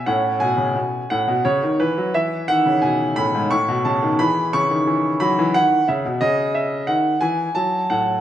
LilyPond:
<<
  \new Staff \with { instrumentName = "Grand piano" } { \time 3/4 \key e \major \tempo 4 = 88 << { fis''8 gis''4 fis''8 cis''8 b'8 | e''8 fis''8 gis''8 b''8 cis'''8 a''8 | b''8 cis'''4 b''8 fis''8 e''8 | dis''8 e''8 fis''8 gis''8 a''8 fis''8 | } \\ { cis'2. | e'2 r4 | gis'2. | gis'2 r4 | } >> }
  \new Staff \with { instrumentName = "Grand piano" } { \clef bass \time 3/4 \key e \major a,8 b,16 cis16 b,8 a,16 b,16 cis16 dis16 e16 fis16 | e8 dis16 cis16 b,8 a,16 gis,16 a,16 b,16 cis16 dis16 | e8 cis16 dis16 e8 fis16 e16 dis8 cis16 b,16 | cis4 dis8 e8 fis8 a,8 | }
>>